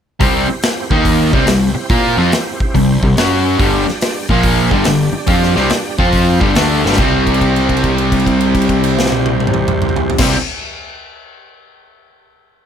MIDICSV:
0, 0, Header, 1, 7, 480
1, 0, Start_track
1, 0, Key_signature, 0, "major"
1, 0, Tempo, 422238
1, 234, Time_signature, 4, 2, 24, 8
1, 5515, Tempo, 426743
1, 14295, End_track
2, 0, Start_track
2, 0, Title_t, "Tonewheel organ"
2, 0, Program_c, 0, 16
2, 244, Note_on_c, 0, 67, 72
2, 246, Note_on_c, 0, 60, 70
2, 249, Note_on_c, 0, 64, 68
2, 255, Note_on_c, 0, 72, 71
2, 1018, Note_on_c, 0, 58, 71
2, 1020, Note_on_c, 0, 75, 68
2, 1021, Note_on_c, 0, 63, 70
2, 1021, Note_on_c, 0, 70, 73
2, 1026, Note_off_c, 0, 67, 0
2, 1027, Note_off_c, 0, 60, 0
2, 1028, Note_off_c, 0, 64, 0
2, 1032, Note_off_c, 0, 72, 0
2, 1497, Note_on_c, 0, 65, 65
2, 1498, Note_off_c, 0, 58, 0
2, 1499, Note_off_c, 0, 63, 0
2, 1499, Note_off_c, 0, 70, 0
2, 1499, Note_off_c, 0, 75, 0
2, 1499, Note_on_c, 0, 61, 65
2, 1507, Note_on_c, 0, 68, 64
2, 1510, Note_on_c, 0, 73, 69
2, 1601, Note_on_c, 0, 72, 71
2, 1606, Note_on_c, 0, 60, 68
2, 1606, Note_on_c, 0, 67, 71
2, 1609, Note_on_c, 0, 64, 73
2, 1611, Note_off_c, 0, 65, 0
2, 1612, Note_off_c, 0, 61, 0
2, 1616, Note_off_c, 0, 68, 0
2, 1617, Note_off_c, 0, 73, 0
2, 3561, Note_off_c, 0, 72, 0
2, 3563, Note_off_c, 0, 60, 0
2, 3563, Note_off_c, 0, 67, 0
2, 3565, Note_off_c, 0, 64, 0
2, 3580, Note_on_c, 0, 61, 68
2, 3583, Note_on_c, 0, 73, 64
2, 3586, Note_on_c, 0, 54, 70
2, 3590, Note_on_c, 0, 66, 72
2, 4060, Note_off_c, 0, 61, 0
2, 4061, Note_off_c, 0, 73, 0
2, 4063, Note_off_c, 0, 54, 0
2, 4064, Note_off_c, 0, 66, 0
2, 4065, Note_on_c, 0, 74, 69
2, 4068, Note_on_c, 0, 67, 65
2, 4075, Note_on_c, 0, 62, 72
2, 4076, Note_on_c, 0, 55, 69
2, 4858, Note_off_c, 0, 74, 0
2, 4860, Note_off_c, 0, 67, 0
2, 4863, Note_off_c, 0, 62, 0
2, 4864, Note_off_c, 0, 55, 0
2, 4871, Note_on_c, 0, 70, 65
2, 4874, Note_on_c, 0, 77, 74
2, 4877, Note_on_c, 0, 65, 78
2, 4879, Note_on_c, 0, 58, 74
2, 5347, Note_off_c, 0, 70, 0
2, 5348, Note_off_c, 0, 77, 0
2, 5350, Note_off_c, 0, 65, 0
2, 5350, Note_on_c, 0, 55, 77
2, 5350, Note_on_c, 0, 67, 74
2, 5351, Note_off_c, 0, 58, 0
2, 5355, Note_on_c, 0, 74, 74
2, 5357, Note_on_c, 0, 62, 79
2, 6773, Note_off_c, 0, 55, 0
2, 6773, Note_off_c, 0, 67, 0
2, 6776, Note_off_c, 0, 74, 0
2, 6776, Note_on_c, 0, 72, 73
2, 6777, Note_off_c, 0, 62, 0
2, 6782, Note_on_c, 0, 60, 68
2, 6783, Note_on_c, 0, 53, 67
2, 6789, Note_on_c, 0, 65, 66
2, 7248, Note_on_c, 0, 62, 71
2, 7257, Note_off_c, 0, 72, 0
2, 7260, Note_off_c, 0, 53, 0
2, 7260, Note_off_c, 0, 60, 0
2, 7260, Note_on_c, 0, 55, 70
2, 7261, Note_on_c, 0, 74, 71
2, 7264, Note_off_c, 0, 65, 0
2, 7265, Note_on_c, 0, 67, 73
2, 7894, Note_off_c, 0, 62, 0
2, 7901, Note_off_c, 0, 55, 0
2, 7901, Note_off_c, 0, 74, 0
2, 7903, Note_off_c, 0, 67, 0
2, 7917, Note_on_c, 0, 72, 71
2, 7925, Note_on_c, 0, 67, 68
2, 7927, Note_on_c, 0, 64, 74
2, 7931, Note_on_c, 0, 60, 75
2, 11421, Note_off_c, 0, 72, 0
2, 11424, Note_off_c, 0, 67, 0
2, 11425, Note_off_c, 0, 64, 0
2, 11428, Note_off_c, 0, 60, 0
2, 11516, Note_on_c, 0, 72, 69
2, 11522, Note_on_c, 0, 67, 63
2, 11523, Note_on_c, 0, 60, 58
2, 11528, Note_on_c, 0, 64, 62
2, 11698, Note_off_c, 0, 72, 0
2, 11701, Note_off_c, 0, 60, 0
2, 11701, Note_off_c, 0, 67, 0
2, 11704, Note_off_c, 0, 64, 0
2, 14295, End_track
3, 0, Start_track
3, 0, Title_t, "Distorted electric guitar"
3, 0, Program_c, 1, 30
3, 224, Note_on_c, 1, 48, 72
3, 227, Note_on_c, 1, 55, 91
3, 236, Note_on_c, 1, 60, 94
3, 536, Note_off_c, 1, 48, 0
3, 538, Note_off_c, 1, 55, 0
3, 542, Note_off_c, 1, 60, 0
3, 1038, Note_on_c, 1, 51, 81
3, 1039, Note_on_c, 1, 58, 83
3, 1046, Note_on_c, 1, 63, 89
3, 1503, Note_off_c, 1, 51, 0
3, 1503, Note_off_c, 1, 58, 0
3, 1507, Note_off_c, 1, 63, 0
3, 1516, Note_on_c, 1, 48, 99
3, 1517, Note_on_c, 1, 55, 98
3, 1525, Note_on_c, 1, 60, 93
3, 1648, Note_off_c, 1, 48, 0
3, 1657, Note_off_c, 1, 55, 0
3, 1662, Note_on_c, 1, 48, 69
3, 1670, Note_on_c, 1, 55, 78
3, 1674, Note_off_c, 1, 60, 0
3, 1919, Note_off_c, 1, 48, 0
3, 1923, Note_off_c, 1, 55, 0
3, 2165, Note_on_c, 1, 58, 80
3, 2165, Note_on_c, 1, 65, 91
3, 2168, Note_on_c, 1, 70, 90
3, 2464, Note_off_c, 1, 58, 0
3, 2464, Note_off_c, 1, 65, 0
3, 2465, Note_off_c, 1, 70, 0
3, 2473, Note_on_c, 1, 53, 75
3, 2479, Note_on_c, 1, 60, 96
3, 2482, Note_on_c, 1, 65, 98
3, 2627, Note_off_c, 1, 53, 0
3, 2630, Note_off_c, 1, 60, 0
3, 2631, Note_off_c, 1, 65, 0
3, 3119, Note_on_c, 1, 48, 56
3, 3123, Note_on_c, 1, 55, 69
3, 3367, Note_off_c, 1, 48, 0
3, 3369, Note_off_c, 1, 55, 0
3, 3446, Note_on_c, 1, 55, 73
3, 3450, Note_on_c, 1, 48, 72
3, 3566, Note_off_c, 1, 55, 0
3, 3568, Note_off_c, 1, 48, 0
3, 3615, Note_on_c, 1, 54, 90
3, 3620, Note_on_c, 1, 61, 101
3, 3628, Note_on_c, 1, 66, 102
3, 4077, Note_off_c, 1, 54, 0
3, 4080, Note_off_c, 1, 61, 0
3, 4083, Note_off_c, 1, 66, 0
3, 4083, Note_on_c, 1, 43, 89
3, 4086, Note_on_c, 1, 50, 97
3, 4087, Note_on_c, 1, 55, 106
3, 4384, Note_off_c, 1, 43, 0
3, 4386, Note_off_c, 1, 50, 0
3, 4386, Note_off_c, 1, 55, 0
3, 4885, Note_on_c, 1, 46, 89
3, 4899, Note_on_c, 1, 53, 96
3, 4902, Note_on_c, 1, 58, 91
3, 5349, Note_off_c, 1, 46, 0
3, 5356, Note_off_c, 1, 53, 0
3, 5356, Note_on_c, 1, 43, 88
3, 5358, Note_off_c, 1, 58, 0
3, 5363, Note_on_c, 1, 50, 104
3, 5372, Note_on_c, 1, 55, 105
3, 5512, Note_off_c, 1, 43, 0
3, 5516, Note_off_c, 1, 50, 0
3, 5520, Note_off_c, 1, 55, 0
3, 5532, Note_on_c, 1, 43, 64
3, 5533, Note_on_c, 1, 50, 70
3, 5775, Note_off_c, 1, 43, 0
3, 5776, Note_off_c, 1, 50, 0
3, 5983, Note_on_c, 1, 53, 82
3, 5993, Note_on_c, 1, 60, 88
3, 5999, Note_on_c, 1, 65, 93
3, 6295, Note_off_c, 1, 53, 0
3, 6299, Note_off_c, 1, 60, 0
3, 6303, Note_off_c, 1, 65, 0
3, 6309, Note_on_c, 1, 48, 74
3, 6311, Note_on_c, 1, 60, 94
3, 6312, Note_on_c, 1, 55, 90
3, 6466, Note_off_c, 1, 48, 0
3, 6467, Note_off_c, 1, 60, 0
3, 6468, Note_off_c, 1, 55, 0
3, 6791, Note_on_c, 1, 53, 82
3, 6799, Note_on_c, 1, 60, 90
3, 6802, Note_on_c, 1, 65, 104
3, 7259, Note_on_c, 1, 43, 96
3, 7260, Note_off_c, 1, 53, 0
3, 7264, Note_off_c, 1, 60, 0
3, 7265, Note_off_c, 1, 65, 0
3, 7266, Note_on_c, 1, 50, 103
3, 7269, Note_on_c, 1, 55, 92
3, 7418, Note_off_c, 1, 50, 0
3, 7421, Note_off_c, 1, 43, 0
3, 7426, Note_off_c, 1, 55, 0
3, 7432, Note_on_c, 1, 50, 76
3, 7442, Note_on_c, 1, 62, 102
3, 7443, Note_on_c, 1, 57, 82
3, 7739, Note_off_c, 1, 50, 0
3, 7744, Note_off_c, 1, 62, 0
3, 7745, Note_off_c, 1, 57, 0
3, 7761, Note_on_c, 1, 50, 83
3, 7762, Note_on_c, 1, 43, 84
3, 7769, Note_on_c, 1, 55, 101
3, 7906, Note_off_c, 1, 50, 0
3, 7910, Note_on_c, 1, 48, 92
3, 7913, Note_off_c, 1, 43, 0
3, 7917, Note_off_c, 1, 55, 0
3, 7936, Note_on_c, 1, 55, 94
3, 7958, Note_on_c, 1, 60, 101
3, 11511, Note_off_c, 1, 48, 0
3, 11515, Note_on_c, 1, 48, 93
3, 11538, Note_off_c, 1, 55, 0
3, 11543, Note_on_c, 1, 55, 94
3, 11559, Note_off_c, 1, 60, 0
3, 11563, Note_on_c, 1, 60, 100
3, 11699, Note_off_c, 1, 48, 0
3, 11713, Note_off_c, 1, 55, 0
3, 11723, Note_off_c, 1, 60, 0
3, 14295, End_track
4, 0, Start_track
4, 0, Title_t, "Picked electric bass"
4, 0, Program_c, 2, 34
4, 239, Note_on_c, 2, 36, 93
4, 531, Note_off_c, 2, 36, 0
4, 1031, Note_on_c, 2, 39, 94
4, 1475, Note_off_c, 2, 39, 0
4, 1516, Note_on_c, 2, 36, 82
4, 1663, Note_off_c, 2, 36, 0
4, 1687, Note_on_c, 2, 36, 72
4, 1974, Note_off_c, 2, 36, 0
4, 2158, Note_on_c, 2, 46, 90
4, 2448, Note_off_c, 2, 46, 0
4, 2467, Note_on_c, 2, 41, 104
4, 2618, Note_off_c, 2, 41, 0
4, 3122, Note_on_c, 2, 36, 79
4, 3410, Note_off_c, 2, 36, 0
4, 3445, Note_on_c, 2, 36, 79
4, 3587, Note_off_c, 2, 36, 0
4, 3600, Note_on_c, 2, 42, 88
4, 4041, Note_off_c, 2, 42, 0
4, 4087, Note_on_c, 2, 31, 85
4, 4374, Note_off_c, 2, 31, 0
4, 4880, Note_on_c, 2, 34, 94
4, 5323, Note_off_c, 2, 34, 0
4, 5358, Note_on_c, 2, 31, 96
4, 5507, Note_off_c, 2, 31, 0
4, 5526, Note_on_c, 2, 31, 79
4, 5814, Note_off_c, 2, 31, 0
4, 5997, Note_on_c, 2, 41, 100
4, 6289, Note_off_c, 2, 41, 0
4, 6324, Note_on_c, 2, 36, 105
4, 6468, Note_off_c, 2, 36, 0
4, 6794, Note_on_c, 2, 41, 88
4, 7237, Note_off_c, 2, 41, 0
4, 7274, Note_on_c, 2, 31, 91
4, 7422, Note_off_c, 2, 31, 0
4, 7440, Note_on_c, 2, 38, 87
4, 7731, Note_off_c, 2, 38, 0
4, 7764, Note_on_c, 2, 31, 97
4, 7903, Note_off_c, 2, 31, 0
4, 7910, Note_on_c, 2, 36, 88
4, 11407, Note_off_c, 2, 36, 0
4, 11523, Note_on_c, 2, 36, 102
4, 11691, Note_off_c, 2, 36, 0
4, 14295, End_track
5, 0, Start_track
5, 0, Title_t, "Muted distorted electric guitar strokes"
5, 552, Note_on_c, 9, 29, 56
5, 665, Note_off_c, 9, 29, 0
5, 1989, Note_on_c, 9, 29, 57
5, 2102, Note_off_c, 9, 29, 0
5, 4420, Note_on_c, 9, 29, 58
5, 4533, Note_off_c, 9, 29, 0
5, 5828, Note_on_c, 9, 29, 54
5, 5940, Note_off_c, 9, 29, 0
5, 14295, End_track
6, 0, Start_track
6, 0, Title_t, "Muted picked electric bass strokes"
6, 564, Note_on_c, 9, 29, 43
6, 678, Note_off_c, 9, 29, 0
6, 1996, Note_on_c, 9, 29, 42
6, 2110, Note_off_c, 9, 29, 0
6, 4399, Note_on_c, 9, 29, 46
6, 4513, Note_off_c, 9, 29, 0
6, 5849, Note_on_c, 9, 29, 40
6, 5962, Note_off_c, 9, 29, 0
6, 14295, End_track
7, 0, Start_track
7, 0, Title_t, "Drums"
7, 233, Note_on_c, 9, 46, 51
7, 236, Note_on_c, 9, 36, 105
7, 347, Note_off_c, 9, 46, 0
7, 350, Note_off_c, 9, 36, 0
7, 711, Note_on_c, 9, 46, 55
7, 723, Note_on_c, 9, 38, 111
7, 825, Note_off_c, 9, 46, 0
7, 837, Note_off_c, 9, 38, 0
7, 1032, Note_on_c, 9, 36, 81
7, 1146, Note_off_c, 9, 36, 0
7, 1194, Note_on_c, 9, 36, 75
7, 1196, Note_on_c, 9, 46, 53
7, 1308, Note_off_c, 9, 36, 0
7, 1310, Note_off_c, 9, 46, 0
7, 1514, Note_on_c, 9, 36, 90
7, 1628, Note_off_c, 9, 36, 0
7, 1670, Note_on_c, 9, 46, 61
7, 1682, Note_on_c, 9, 38, 105
7, 1783, Note_off_c, 9, 46, 0
7, 1796, Note_off_c, 9, 38, 0
7, 2154, Note_on_c, 9, 46, 48
7, 2158, Note_on_c, 9, 36, 101
7, 2267, Note_off_c, 9, 46, 0
7, 2272, Note_off_c, 9, 36, 0
7, 2639, Note_on_c, 9, 46, 53
7, 2651, Note_on_c, 9, 38, 105
7, 2752, Note_off_c, 9, 46, 0
7, 2765, Note_off_c, 9, 38, 0
7, 2960, Note_on_c, 9, 36, 80
7, 3074, Note_off_c, 9, 36, 0
7, 3123, Note_on_c, 9, 36, 75
7, 3131, Note_on_c, 9, 46, 51
7, 3237, Note_off_c, 9, 36, 0
7, 3244, Note_off_c, 9, 46, 0
7, 3441, Note_on_c, 9, 36, 89
7, 3554, Note_off_c, 9, 36, 0
7, 3605, Note_on_c, 9, 46, 56
7, 3618, Note_on_c, 9, 38, 117
7, 3719, Note_off_c, 9, 46, 0
7, 3731, Note_off_c, 9, 38, 0
7, 4087, Note_on_c, 9, 36, 109
7, 4095, Note_on_c, 9, 46, 49
7, 4201, Note_off_c, 9, 36, 0
7, 4208, Note_off_c, 9, 46, 0
7, 4416, Note_on_c, 9, 38, 33
7, 4530, Note_off_c, 9, 38, 0
7, 4563, Note_on_c, 9, 46, 60
7, 4575, Note_on_c, 9, 38, 107
7, 4676, Note_off_c, 9, 46, 0
7, 4689, Note_off_c, 9, 38, 0
7, 4878, Note_on_c, 9, 36, 80
7, 4992, Note_off_c, 9, 36, 0
7, 5039, Note_on_c, 9, 46, 56
7, 5042, Note_on_c, 9, 36, 85
7, 5152, Note_off_c, 9, 46, 0
7, 5155, Note_off_c, 9, 36, 0
7, 5357, Note_on_c, 9, 36, 84
7, 5471, Note_off_c, 9, 36, 0
7, 5505, Note_on_c, 9, 46, 60
7, 5518, Note_on_c, 9, 38, 109
7, 5618, Note_off_c, 9, 46, 0
7, 5630, Note_off_c, 9, 38, 0
7, 5984, Note_on_c, 9, 46, 52
7, 5994, Note_on_c, 9, 36, 96
7, 6096, Note_off_c, 9, 46, 0
7, 6107, Note_off_c, 9, 36, 0
7, 6165, Note_on_c, 9, 38, 36
7, 6277, Note_off_c, 9, 38, 0
7, 6318, Note_on_c, 9, 38, 34
7, 6430, Note_off_c, 9, 38, 0
7, 6466, Note_on_c, 9, 46, 55
7, 6478, Note_on_c, 9, 38, 101
7, 6579, Note_off_c, 9, 46, 0
7, 6591, Note_off_c, 9, 38, 0
7, 6790, Note_on_c, 9, 36, 87
7, 6903, Note_off_c, 9, 36, 0
7, 6948, Note_on_c, 9, 46, 51
7, 6952, Note_on_c, 9, 36, 70
7, 7061, Note_off_c, 9, 46, 0
7, 7064, Note_off_c, 9, 36, 0
7, 7270, Note_on_c, 9, 36, 93
7, 7383, Note_off_c, 9, 36, 0
7, 7430, Note_on_c, 9, 46, 57
7, 7442, Note_on_c, 9, 38, 105
7, 7542, Note_off_c, 9, 46, 0
7, 7555, Note_off_c, 9, 38, 0
7, 7774, Note_on_c, 9, 38, 58
7, 7848, Note_off_c, 9, 38, 0
7, 7848, Note_on_c, 9, 38, 82
7, 7905, Note_on_c, 9, 49, 70
7, 7913, Note_on_c, 9, 36, 90
7, 7961, Note_off_c, 9, 38, 0
7, 8018, Note_off_c, 9, 49, 0
7, 8025, Note_off_c, 9, 36, 0
7, 8231, Note_on_c, 9, 36, 67
7, 8234, Note_on_c, 9, 49, 42
7, 8316, Note_on_c, 9, 57, 50
7, 8344, Note_off_c, 9, 36, 0
7, 8346, Note_off_c, 9, 49, 0
7, 8395, Note_on_c, 9, 36, 58
7, 8397, Note_on_c, 9, 49, 43
7, 8429, Note_off_c, 9, 57, 0
7, 8508, Note_off_c, 9, 36, 0
7, 8510, Note_off_c, 9, 49, 0
7, 8563, Note_on_c, 9, 57, 44
7, 8675, Note_off_c, 9, 57, 0
7, 8711, Note_on_c, 9, 36, 58
7, 8711, Note_on_c, 9, 49, 45
7, 8795, Note_on_c, 9, 57, 44
7, 8823, Note_off_c, 9, 36, 0
7, 8824, Note_off_c, 9, 49, 0
7, 8873, Note_on_c, 9, 49, 43
7, 8875, Note_on_c, 9, 36, 60
7, 8907, Note_off_c, 9, 57, 0
7, 8986, Note_off_c, 9, 49, 0
7, 8987, Note_off_c, 9, 36, 0
7, 9037, Note_on_c, 9, 57, 51
7, 9149, Note_off_c, 9, 57, 0
7, 9192, Note_on_c, 9, 36, 65
7, 9192, Note_on_c, 9, 49, 52
7, 9277, Note_on_c, 9, 57, 43
7, 9305, Note_off_c, 9, 36, 0
7, 9305, Note_off_c, 9, 49, 0
7, 9355, Note_on_c, 9, 36, 65
7, 9362, Note_on_c, 9, 49, 52
7, 9389, Note_off_c, 9, 57, 0
7, 9467, Note_off_c, 9, 36, 0
7, 9474, Note_off_c, 9, 49, 0
7, 9513, Note_on_c, 9, 57, 51
7, 9625, Note_off_c, 9, 57, 0
7, 9671, Note_on_c, 9, 36, 59
7, 9672, Note_on_c, 9, 49, 51
7, 9749, Note_on_c, 9, 57, 49
7, 9784, Note_off_c, 9, 36, 0
7, 9784, Note_off_c, 9, 49, 0
7, 9835, Note_on_c, 9, 36, 61
7, 9835, Note_on_c, 9, 49, 50
7, 9862, Note_off_c, 9, 57, 0
7, 9947, Note_off_c, 9, 36, 0
7, 9947, Note_off_c, 9, 49, 0
7, 9997, Note_on_c, 9, 57, 54
7, 10110, Note_off_c, 9, 57, 0
7, 10166, Note_on_c, 9, 38, 91
7, 10246, Note_off_c, 9, 38, 0
7, 10246, Note_on_c, 9, 38, 94
7, 10316, Note_on_c, 9, 48, 93
7, 10359, Note_off_c, 9, 38, 0
7, 10429, Note_off_c, 9, 48, 0
7, 10471, Note_on_c, 9, 48, 96
7, 10584, Note_off_c, 9, 48, 0
7, 10635, Note_on_c, 9, 48, 80
7, 10712, Note_on_c, 9, 47, 95
7, 10748, Note_off_c, 9, 48, 0
7, 10786, Note_off_c, 9, 47, 0
7, 10786, Note_on_c, 9, 47, 94
7, 10898, Note_off_c, 9, 47, 0
7, 10945, Note_on_c, 9, 45, 102
7, 11058, Note_off_c, 9, 45, 0
7, 11100, Note_on_c, 9, 45, 100
7, 11182, Note_off_c, 9, 45, 0
7, 11182, Note_on_c, 9, 45, 85
7, 11265, Note_on_c, 9, 43, 98
7, 11295, Note_off_c, 9, 45, 0
7, 11378, Note_off_c, 9, 43, 0
7, 11415, Note_on_c, 9, 43, 103
7, 11512, Note_on_c, 9, 49, 116
7, 11522, Note_on_c, 9, 36, 113
7, 11525, Note_on_c, 9, 38, 98
7, 11528, Note_off_c, 9, 43, 0
7, 11625, Note_off_c, 9, 49, 0
7, 11634, Note_off_c, 9, 36, 0
7, 11637, Note_off_c, 9, 38, 0
7, 14295, End_track
0, 0, End_of_file